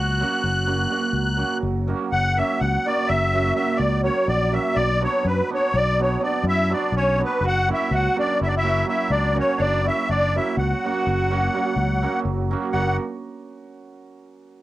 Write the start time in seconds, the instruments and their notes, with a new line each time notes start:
Already playing: fretless electric bass C#2, hammered dulcimer F#3, trumpet F#4, accordion F#6
0.20 hammered dulcimer F#3 A#3 C#4 F#4
0.44 fretless electric bass F#1
0.66 hammered dulcimer F#3 A#3 C#4 F#4
0.90 hammered dulcimer F#3 A#3 C#4 F#4
1.13 fretless electric bass C#2
1.36 hammered dulcimer F#3 A#3 C#4 F#4
1.63 fretless electric bass F#1
1.87 hammered dulcimer F#3 A#3 C#4 F#4
2.12 fretless electric bass F#1, accordion F#5
2.37 hammered dulcimer F#3 A#3 C#4 F#4, accordion E5
2.60 fretless electric bass C#2, accordion F#5
2.86 hammered dulcimer F#3 A#3 C#4 F#4, accordion D5
3.08 fretless electric bass F#1, accordion E5
3.33 hammered dulcimer F#3 A#3 C#4 F#4
3.55 hammered dulcimer F#3 A#3 C#4 F#4, accordion E5
3.76 fretless electric bass C#2, accordion D5
4.04 hammered dulcimer F#3 A#3 C#4 F#4, accordion C#5
4.28 fretless electric bass A#1, accordion D5
4.52 hammered dulcimer F#3 A#3 C#4 F#4, accordion E5
4.76 fretless electric bass B1, accordion D5
5.00 hammered dulcimer F#3 B3 D4 F#4, accordion C#5
5.25 fretless electric bass F#2, accordion B4
5.50 hammered dulcimer F#3 B3 D4 F#4
5.55 accordion C#5
5.74 fretless electric bass B1, accordion D5
5.99 hammered dulcimer F#3 B3 D4 F#4, accordion C#5
6.20 hammered dulcimer F#3 B3 D4 F#4, accordion D5
6.43 fretless electric bass F#2, trumpet E4
6.49 accordion E5
6.69 hammered dulcimer F#3 B3 D4 F#4, trumpet D4
6.73 accordion D5
6.92 fretless electric bass B1, trumpet C#4
6.97 accordion C#5
7.18 hammered dulcimer F#3 B3 D4 F#4, trumpet B3
7.25 accordion B4
7.41 fretless electric bass F#1, trumpet F#4
7.48 accordion F#5
7.67 hammered dulcimer F#3 A#3 C#4 F#4, trumpet E4
7.74 accordion E5
7.91 fretless electric bass C#2, trumpet F#4, accordion F#5
8.16 hammered dulcimer F#3 A#3 C#4 F#4, trumpet D4, accordion D5
8.41 fretless electric bass F#1, trumpet E4, accordion E5
8.47 trumpet D4, accordion D5
8.56 trumpet E4, accordion E5
8.63 hammered dulcimer F#3 A#3 C#4 F#4
8.87 hammered dulcimer F#3 A#3 C#4 F#4, trumpet E4, accordion E5
9.10 fretless electric bass C#2, trumpet D4, accordion D5
9.34 hammered dulcimer F#3 A#3 C#4 F#4, trumpet C#4
9.40 accordion C#5
9.57 fretless electric bass F#1, trumpet D4
9.61 accordion D5
9.83 hammered dulcimer F#3 A#3 C#4 F#4, trumpet E4, accordion E5
10.08 fretless electric bass F#1, trumpet D4, accordion D5
10.36 hammered dulcimer F#3 A#3 C#4 F#4, trumpet E4, accordion E5
10.57 fretless electric bass C#2, trumpet F#4, accordion F#5
10.84 hammered dulcimer F#3 A#3 C#4 F#4
11.06 fretless electric bass F#1
11.30 hammered dulcimer F#3 A#3 C#4 F#4
11.54 hammered dulcimer F#3 A#3 C#4 F#4
11.76 fretless electric bass C#2
12.02 hammered dulcimer F#3 A#3 C#4 F#4
12.25 fretless electric bass F#1
12.51 hammered dulcimer F#3 A#3 C#4 F#4
12.72 fretless electric bass F#1, hammered dulcimer F#3 A#3 C#4 F#4, trumpet F#4, accordion F#5